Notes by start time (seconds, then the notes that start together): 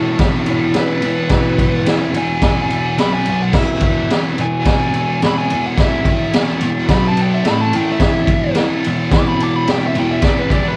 Already playing: E2 B2 E3 E4 C#5
0.18 E2 B2 E3 B3 E4 B4, kick, snare, ride
0.24 E4 C#5
0.46 B3 E4 B4, ride
0.50 C#5
0.74 E2 B2 E3 B3 E4 B4, snare, ride
0.80 B4
1.01 E2 B2 E3, ride
1.28 E2 B2 E3 B3 E4 F#4, kick, snare, ride
1.58 kick, ride
1.82 E2 B2 E3 B3 E4 G#4, ride
1.87 snare
2.13 E2 B2 E3, ride
2.18 G#5
2.41 E2 B2 E3 B3 E4 G#4, kick, snare, ride
2.67 B3 E4 B4, ride
2.97 B2 F#3 B3 F#4 B4 B5, snare, ride
3.14 G#5
3.25 B2 F#3 B3, ride
3.42 F#5
3.49 E4 G#4 B4
3.53 E2 B2 E3, kick, snare, crash
3.58 E5
3.80 E5, kick, ride
4.06 E2 E4 G#4 B4, ride
4.11 B2 E3, snare
4.38 E2 B2 E3 G#5, ride
4.62 E2 E4 G#4 C#5, kick, ride
4.66 B2 E3, snare
4.92 E4 G#4 C#5, ride
5.19 E2 B2 E4 G#4 C#5, snare, ride
5.24 E3 B5
5.38 G#5
5.50 E2 B2 E3, ride
5.67 F#5
5.74 E2 E4 G#4 B4
5.78 B2 E3, kick, snare, ride
5.82 E5
6.05 E5, kick, ride
6.30 E2 E4 G#4 B4, ride
6.34 B2 E3, snare
6.61 E2 B2 E3, ride
6.84 B3 F#4 B4
6.89 B2 F#3 B3, kick, snare, ride
6.94 B5
7.08 A5
7.16 B3 F#4 A4, ride
7.21 G5
7.34 E5
7.44 A2 E3 A3 E4 A4 B5, snare, ride
7.61 A5
7.73 A2 E3 A3 G5, ride
7.92 E5
7.98 E2 B2 E3 B3 E4 G#4, kick, snare, ride
8.04 E5
8.28 kick, ride
8.55 E2 B2 E3 B3 E4 G#4, snare, ride
8.84 E2 B2 E3, ride
9.09 E2 B3 E4 G#4, kick, ride
9.13 B2 E3 D6, snare
9.28 B5
9.37 B3 E4 G#4, ride
9.43 D6
9.56 B5
9.66 E2 B2 E3 B3 E4 B4, snare, ride
9.71 G5
9.87 E5
9.95 E2 B2 E3, ride
10.00 G5
10.12 E5
10.21 E2 B2 B3 E4 B4, kick, snare, ride
10.25 E3 D5
10.40 B4
10.50 D5, kick, ride
10.68 B4